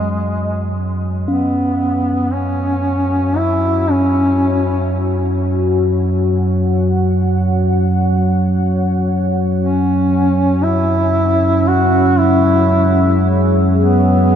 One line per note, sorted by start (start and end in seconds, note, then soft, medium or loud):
0.00 1.28 F#2 medium
0.00 1.26 F#3 medium
0.00 0.72 G#3 medium
0.00 3.68 C#4 medium
0.00 1.29 F#4 medium
0.00 1.27 G#4 medium
0.00 14.36 C#5 medium
1.28 14.36 F#2 medium
1.28 14.36 F#3 medium
1.28 2.35 B3 medium
1.28 14.36 C#4 medium
1.28 12.52 F#4 medium
2.33 3.39 C#4 medium
3.37 3.92 E4 medium
3.90 4.95 C#4 medium
4.88 12.41 F#5 medium
9.61 14.36 C#4 medium
9.61 10.64 C#4 medium
10.62 11.70 E4 medium
11.51 14.36 G#4 medium
11.68 12.20 F#4 medium
12.19 13.25 E4 medium
13.79 14.36 B3 medium